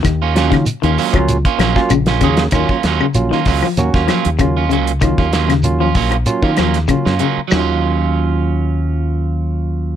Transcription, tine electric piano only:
X:1
M:4/4
L:1/16
Q:"Swing 16ths" 1/4=96
K:Ebm
V:1 name="Tine electric piano"
z2 [G,B,DF]2 z3 [G,B,DF] z3 [G,B,DF] z2 [G,B,DA] z | [G,B,DF] z3 [G,B,DF] z3 [G,B,DG] z3 [G,B,DF] z3 | [G,B,DF] z3 [G,B,DF] z3 [G,B,DF] z3 [G,B,DF] z3 | [G,B,DF]16 |]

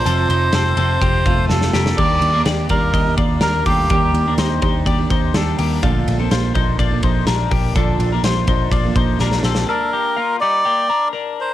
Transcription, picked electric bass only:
X:1
M:4/4
L:1/8
Q:1/4=125
K:Eblyd
V:1 name="Picked electric bass" clef=bass
F,,, F,,, F,,, F,,, F,,, F,,, F,,, F,,, | E,, E,, E,, E,, E,, E,, E,, E,, | E,, E,, E,, E,, E,, E,, E,, E,, | B,,, B,,, B,,, B,,, B,,, B,,, B,,, B,,, |
B,,, B,,, B,,, B,,, B,,, B,,, B,,, B,,, | z8 |]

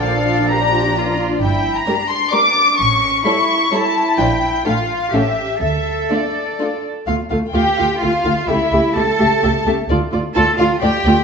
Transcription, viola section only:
X:1
M:3/4
L:1/8
Q:1/4=129
K:Dm
V:1 name="Viola section"
[F,D]6 | z2 [G,G]2 [G,G]2 | z2 [G,E]2 [G,E]2 | [F,D]2 [A,D]2 [A,^C]2 |
z2 [A,D]2 [A,D]2 | [A,F] [A,F] [A,F] [A,F] [A,F] [A,F] | [A,G] [A,G] [A,G] [A,G] [A,G] [A,G] | [A,F] [A,F] [A,F] [A,F] [A,F] [A,F] |]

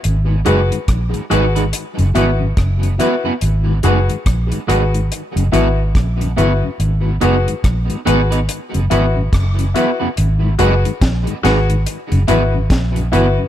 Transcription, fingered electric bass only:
X:1
M:4/4
L:1/16
Q:"Swing 16ths" 1/4=71
K:G#m
V:1 name="Fingered electric bass" clef=bass
G,,,2 F,,, z A,,, z G,,,2 z F,,, G,,,2 F,,,2 z2 | G,,,2 F,,, z A,,, z G,,,2 z F,,, G,,,2 A,,,2 =G,,, z | G,,,2 F,,, z A,,, z G,,,2 z F,,, G,,,2 F,,,2 z2 | G,,,2 F,,, z A,,, z G,,,2 z F,,, G,,,2 A,,,2 =G,,, z |]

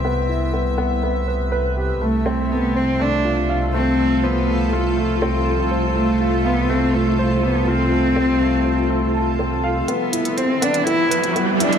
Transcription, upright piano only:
X:1
M:4/4
L:1/8
Q:1/4=122
K:Flyd
V:1 name="Upright piano"
B, E B, B, B, B B G | A, C A, c A, F f A, | A, c A, F A, C A, c | A, F f A, A, c A, F |
A, C A, c A, a C f | B, E c B, B, B B, E |]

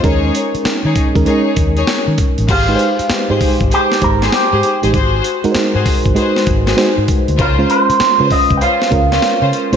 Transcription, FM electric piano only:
X:1
M:4/4
L:1/16
Q:"Swing 16ths" 1/4=98
K:Ab
V:1 name="FM electric piano"
[A,DEB]6 z [A,DEB] [A,DEB]6 z2 | z [A,EG_c=c]3 z [A,EGc]4 z [A,EGc]4 z [A,EGc] | z3 [A,E_GBc]4 z [A,EG_c=c]3 z [A,EGc]4 | z [A,DFc]3 z [A,DF_c=c]4 z [A,DFB]4 z [A,DFc] |]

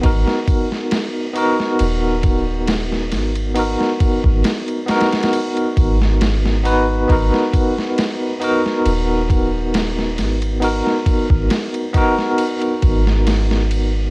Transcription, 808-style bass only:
X:1
M:4/4
L:1/16
Q:"Swing 16ths" 1/4=68
K:G#m
V:1 name="808-style bass" clef=bass
G,,, z6 z D,,,6 G,,,2- | G,,, z2 G,,, z6 G,,,6 | G,,, z6 z D,,,6 G,,,2- | G,,, z2 G,,, z6 G,,,6 |]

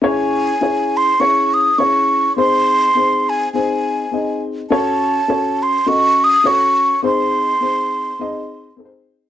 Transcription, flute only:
X:1
M:4/4
L:1/8
Q:"Swing" 1/4=103
K:C#m
V:1 name="Flute"
g3 ^b c' d' c'2 | ^b3 g g3 z | a3 ^b c' d' c'2 | ^b6 z2 |]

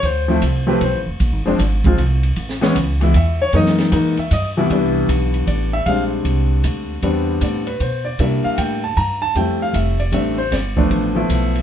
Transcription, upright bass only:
X:1
M:3/4
L:1/8
Q:"Swing" 1/4=154
K:Bblyd
V:1 name="Upright bass" clef=bass
D,,2 C,,2 (3=B,,, A,,, F,,, | (3B,,, _A,,, F,,, A,,,2 C,,2 | A,,,2 ^C,,2 E,,2 | _G,,2 _A,, z =G,,2 |
[K:C] C,,2 B,,,2 A,,,2 | _B,,,2 C,,2 D,,2 | E,,2 A,,2 B,,2 | C, z A,,2 G,,2 |
F,,2 F,,,2 A,,,2 | G,,,2 A,,,2 B,,,2 |]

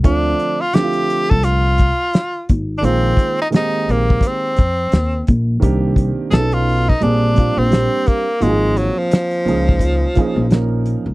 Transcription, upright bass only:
X:1
M:4/4
L:1/16
Q:"Swing 16ths" 1/4=86
K:Bbmix
V:1 name="Upright bass" clef=bass
D,,2 z4 z C,,4 z3 A,,,2 | B,,,2 z4 B,,,2 z2 F,,2 E,,2 B,,,2 | C,,3 z =B,,,4 _B,,,3 B,,,2 z3 | A,,,3 z3 _D,,4 z B,,,4 D,, |]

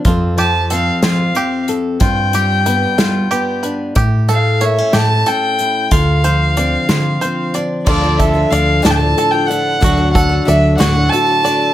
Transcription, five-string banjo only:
X:1
M:6/8
L:1/8
Q:3/8=61
K:Dm
V:1 name="Five-string banjo"
F G A F G2 | F G =B F G B | G A ^c G A2 | F c d F c d |
F A d D A2 | ^F A d F A d |]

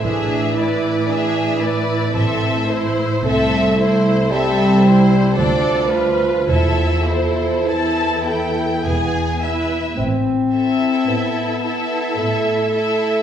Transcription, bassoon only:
X:1
M:3/4
L:1/16
Q:1/4=54
K:Am
V:1 name="Bassoon" clef=bass
E,8- E,3 z | A,4 G,4 F,4 | F,4 E,6 z2 | C4 B,4 A,4 |]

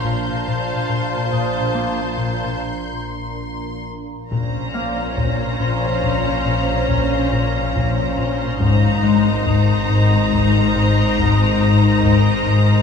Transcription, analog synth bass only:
X:1
M:5/4
L:1/8
Q:1/4=70
K:Fphr
V:1 name="Analog synth bass" clef=bass
B,, B,, B,, B,, B, B,, z4 | [K:Bbm] B,, B, B,, B,, B,, B,, B,, B,, B,, B,, | A,, A, A,, A,, A,, A,, A,, A,, A,, A,, |]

